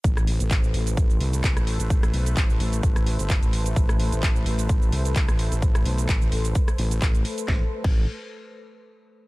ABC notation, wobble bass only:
X:1
M:4/4
L:1/16
Q:"Swing 16ths" 1/4=129
K:Am
V:1 name="Wobble bass" clef=bass
A,,,3 A,,,3 A,,,4 C,,3 A,,,2 A,,,- | A,,,2 B,,,2 A,,, A,,, A,,,2 A,,,3 G,,,2 A,,,3 | A,,,3 A,,,3 A,,,4 C,,3 A,,,2 A,,,- | A,,,2 B,,,2 A,,, A,,, A,,,2 z2 A,,,2 A,,,2 z2 |
A,,, z2 A,,,2 z8 z3 |]